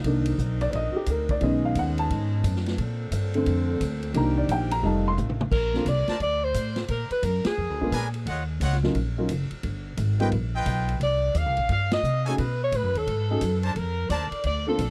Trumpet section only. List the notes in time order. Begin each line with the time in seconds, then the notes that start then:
6.09 D4 A#4 C5 A5
7.93 D4 A#4 B4 G#5
8.27 F4 C#5 D#5 F#5
8.62 F4 C#5 D#5 F#5
10.20 F4 B4 D#5 G5
10.55 F4 B4 D#5 G5
12.26 D#4 A4 C#5 G#5
13.64 D4 A#4 C5 A5
14.11 D4 A#4 C5 A5